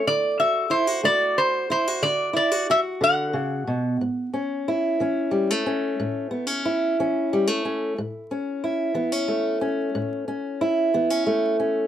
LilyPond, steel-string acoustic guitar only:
\new Staff \with { instrumentName = "Steel-string acoustic guitar" } { \time 12/8 \key a \major \tempo 4. = 61 << { r8 fis'8 e'16 fis'16 fis'4 e'16 fis'8. e'16 fis'16 fis'2 | r8 cis'8 e'8 cis'8 g16 a16 cis'4 b16 cis'16 e'8 cis'8 g16 a16 cis'8 | r8 cis'8 e'8 b16 cis'16 a8 cis'4 cis'8 e'8 b16 cis'16 a8 cis'8 | } \\ { d4 r8 a4 r8 d4 r8 d8 cis8 b,8 | a,4 r8 e4 r8 a,4 r8 e4 r8 | a,4 r8 e4 r8 a,4 r8 e4 r8 | } >> }